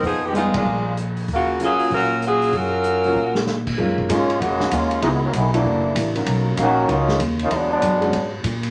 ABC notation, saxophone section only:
X:1
M:4/4
L:1/8
Q:"Swing" 1/4=193
K:Ebm
V:1 name="Saxophone section"
[F,CEA] [E,A,C=G] [A,CEF] [A,B,=DF]3 z2 | [D,B,FG]2 [G,DFA]2 [G,DFB]2 [G,DFA]2 | [G,DFB]6 z2 | [K:F#] z8 |
z8 | z8 | z8 |]